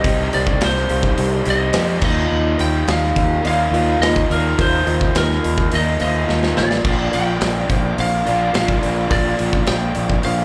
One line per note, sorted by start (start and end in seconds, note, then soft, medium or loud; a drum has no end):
0.00 0.28 C2 medium
0.00 1.44 C3 loud
0.00 0.30 D#5 loud
0.04 1.45 D#3 loud
0.04 1.45 G3 medium
0.04 1.45 C4 loud
0.04 0.28 G4 loud
0.04 1.44 G4 loud
0.04 2.02 G4 medium
0.04 0.28 C5 medium
0.04 2.03 C5 medium
0.04 0.28 D#5 loud
0.04 2.02 D#5 medium
0.04 kick loud
0.04 open hi-hat medium
0.33 0.57 C2 loud
0.33 0.56 G4 medium
0.33 0.56 C5 medium
0.33 0.63 D5 loud
0.33 0.56 D#5 loud
0.33 open hi-hat medium
0.47 kick medium
0.61 0.85 C2 loud
0.61 0.85 G4 medium
0.61 0.85 C5 medium
0.61 1.51 C5 loud
0.61 0.85 D#5 medium
0.61 snare loud
0.61 open hi-hat medium
0.76 snare soft
0.89 1.13 C2 medium
0.89 1.13 G4 medium
0.89 1.13 C5 medium
0.89 1.13 F5 medium
0.89 open hi-hat medium
1.03 kick medium
1.18 1.41 C2 loud
1.18 1.41 G4 medium
1.18 1.41 C5 medium
1.18 1.41 D#5 medium
1.18 open hi-hat medium
1.45 1.70 C2 medium
1.45 1.73 C3 medium
1.45 1.74 D#3 medium
1.45 1.74 G3 medium
1.45 1.73 C4 medium
1.45 1.73 G4 medium
1.45 1.69 G4 medium
1.45 1.69 C5 medium
1.45 1.69 D#5 medium
1.45 open hi-hat medium
1.50 1.87 D#5 loud
1.73 1.97 F2 medium
1.73 2.01 C3 medium
1.73 2.01 D#3 medium
1.73 2.02 G3 medium
1.73 2.02 C4 medium
1.73 1.97 G4 loud
1.73 1.97 C5 medium
1.73 1.97 D#5 loud
1.73 snare loud
1.73 open hi-hat medium
1.77 2.03 G4 medium
1.87 2.01 D5 loud
2.01 2.26 D#2 medium
2.01 3.43 D#3 medium
2.01 3.44 A#3 medium
2.01 4.28 A#3 medium
2.01 3.45 D#4 medium
2.01 2.48 F4 medium
2.01 4.28 F4 medium
2.01 3.46 F4 medium
2.01 2.48 A#4 medium
2.01 2.48 D#5 medium
2.01 4.28 D#5 medium
2.01 2.62 D#5 loud
2.01 kick loud
2.01 crash loud
2.31 2.55 D#2 loud
2.57 2.83 D#2 medium
2.57 2.82 F4 medium
2.57 2.82 A#4 medium
2.57 2.81 D#5 loud
2.57 2.90 G5 loud
2.57 open hi-hat medium
2.87 3.11 D#2 loud
2.87 3.10 F4 medium
2.87 3.11 A#4 medium
2.87 3.11 D5 medium
2.87 3.46 F5 loud
2.87 snare loud
2.87 open hi-hat medium
3.03 snare soft
3.16 3.39 D#2 medium
3.16 3.40 F4 medium
3.16 3.40 A#4 medium
3.16 3.40 D#5 medium
3.16 kick medium
3.16 open hi-hat medium
3.43 3.68 D#2 medium
3.43 3.71 D#3 medium
3.43 3.74 A#3 medium
3.43 3.72 D#4 medium
3.43 3.67 F4 medium
3.43 3.71 F4 loud
3.43 3.67 A#4 medium
3.43 3.68 D#5 medium
3.43 open hi-hat medium
3.47 3.99 F5 loud
3.71 3.95 D#2 medium
3.71 4.30 A#3 medium
3.71 4.28 D#4 medium
3.71 4.31 F4 medium
3.71 3.96 F4 medium
3.71 3.96 A#4 medium
3.71 3.96 D#5 medium
3.71 open hi-hat medium
3.76 4.27 D#3 medium
4.00 4.24 D#2 medium
4.00 4.25 F4 loud
4.00 4.24 A#4 loud
4.00 4.31 D#5 medium
4.00 4.24 D#5 loud
4.00 snare loud
4.00 open hi-hat medium
4.16 kick medium
4.28 4.53 D#2 medium
4.28 5.69 D#3 medium
4.28 5.72 A#3 medium
4.28 6.83 A#3 medium
4.28 5.70 D#4 loud
4.28 6.83 D#4 medium
4.28 4.53 F4 medium
4.28 6.82 F4 medium
4.28 5.74 F4 loud
4.28 4.53 A#4 medium
4.28 4.57 A#4 medium
4.28 4.53 D#5 medium
4.28 open hi-hat medium
4.58 4.81 D#2 medium
4.58 4.81 F4 loud
4.58 4.81 A#4 medium
4.58 5.18 C5 loud
4.58 4.81 D#5 loud
4.58 kick loud
4.58 open hi-hat medium
4.86 5.10 D#2 loud
4.86 5.09 F4 medium
4.86 5.09 A#4 medium
4.86 5.09 D#5 loud
4.86 open hi-hat medium
5.01 kick medium
5.15 5.38 D#2 loud
5.15 5.38 F4 medium
5.15 5.38 A#4 medium
5.15 5.75 A#4 medium
5.15 5.38 D#5 medium
5.15 snare loud
5.15 open hi-hat medium
5.31 snare soft
5.43 5.67 D#2 medium
5.43 5.66 F4 medium
5.43 5.66 A#4 medium
5.43 5.66 D#5 medium
5.43 open hi-hat medium
5.58 kick medium
5.71 5.96 D#2 loud
5.71 5.98 D#3 medium
5.71 6.02 A#3 medium
5.71 5.99 D#4 medium
5.71 5.94 F4 medium
5.71 5.99 F4 medium
5.71 5.94 A#4 medium
5.71 5.94 D#5 medium
5.71 open hi-hat medium
5.75 6.00 D#5 medium
5.99 6.24 D#2 medium
5.99 6.86 A#3 medium
5.99 6.55 D#4 medium
5.99 6.22 F4 medium
5.99 6.88 F4 medium
5.99 6.22 A#4 medium
5.99 6.22 C5 medium
5.99 6.53 D#5 loud
5.99 open hi-hat medium
6.04 6.57 D#3 medium
6.27 6.52 D#2 medium
6.27 6.50 F4 medium
6.27 6.51 A#4 medium
6.27 6.50 F5 loud
6.27 snare medium
6.43 snare medium
6.56 6.80 A1 medium
6.56 6.79 F4 medium
6.56 6.79 A#4 medium
6.56 7.15 D5 loud
6.56 6.79 D#5 medium
6.56 snare medium
6.71 snare medium
6.84 7.08 A#1 loud
6.84 8.25 A#2 medium
6.84 8.25 D3 medium
6.84 9.08 A#3 medium
6.84 8.25 A#3 loud
6.84 8.25 D4 loud
6.84 7.07 F4 loud
6.84 9.07 F4 medium
6.84 7.07 A#4 medium
6.84 7.07 D5 loud
6.84 9.09 D5 medium
6.84 kick loud
6.84 crash loud
6.88 8.26 F4 loud
7.11 7.37 A#1 medium
7.11 7.35 F4 medium
7.11 7.35 A#4 medium
7.11 7.35 D5 loud
7.11 7.94 G5 loud
7.11 open hi-hat medium
7.39 7.65 A#1 medium
7.39 7.63 F4 medium
7.39 7.63 A#4 medium
7.39 7.63 D5 medium
7.39 snare loud
7.39 open hi-hat medium
7.70 7.93 A#1 medium
7.70 7.92 F4 medium
7.70 7.92 A#4 medium
7.70 7.92 C5 medium
7.70 kick medium
7.70 open hi-hat medium
7.97 8.21 A#1 loud
7.97 8.20 F4 medium
7.97 8.20 A#4 medium
7.97 8.20 C5 medium
7.97 8.54 F5 loud
7.97 open hi-hat medium
8.25 8.50 A#1 medium
8.25 8.52 A#2 medium
8.25 8.53 D3 medium
8.25 8.54 A#3 medium
8.25 8.53 D4 medium
8.25 8.48 F4 medium
8.25 8.55 F4 medium
8.25 8.49 A#4 medium
8.25 8.48 D5 medium
8.25 open hi-hat medium
8.53 8.78 A#1 medium
8.53 9.08 A#2 medium
8.53 9.09 D3 medium
8.53 9.10 A#3 medium
8.53 9.10 D4 medium
8.53 8.76 F4 loud
8.53 9.13 F4 medium
8.53 8.77 A#4 medium
8.53 8.77 D5 loud
8.53 9.07 F5 medium
8.53 snare loud
8.53 open hi-hat medium
8.68 kick loud
8.82 9.07 A#1 medium
8.82 9.05 F4 medium
8.82 9.05 A#4 medium
8.82 9.05 D5 medium
8.82 open hi-hat medium
9.08 9.34 A#1 loud
9.08 10.45 A#2 medium
9.08 10.45 D3 medium
9.08 10.45 A#3 medium
9.08 10.45 D4 medium
9.08 10.45 F4 medium
9.08 9.33 F4 loud
9.08 9.33 A#4 medium
9.08 9.33 D5 loud
9.08 9.70 D5 loud
9.08 kick loud
9.08 open hi-hat medium
9.13 10.45 D4 loud
9.13 10.45 F4 loud
9.38 9.63 A#1 medium
9.38 9.61 F4 medium
9.38 9.62 A#4 medium
9.38 9.61 D5 loud
9.38 open hi-hat medium
9.53 kick medium
9.67 9.92 A#1 loud
9.67 9.91 F4 medium
9.67 9.91 A#4 medium
9.67 9.91 C5 medium
9.67 10.21 G5 loud
9.67 snare loud
9.67 open hi-hat medium
9.95 10.20 A#1 medium
9.95 10.18 F4 medium
9.95 10.18 A#4 medium
9.95 10.19 D5 medium
9.95 open hi-hat medium
10.10 kick medium
10.23 10.45 A#1 medium
10.23 10.45 F4 medium
10.23 10.45 A#4 medium
10.23 10.45 C5 medium
10.23 10.45 F5 medium
10.23 open hi-hat medium